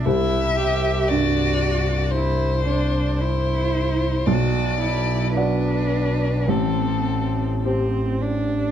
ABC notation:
X:1
M:4/4
L:1/8
Q:1/4=55
K:Clyd
V:1 name="Violin"
e2 d2 c2 c2 | d2 B2 A2 z2 |]
V:2 name="Cello"
E G F2 E D E2 | F E D2 C2 C D |]
V:3 name="Upright piano" clef=bass
C,,2 G,,6 | B,,,2 [Fd]2 A,,,2 [Gc]2 |]
V:4 name="Double bass" clef=bass
C,,8 | B,,,4 A,,,4 |]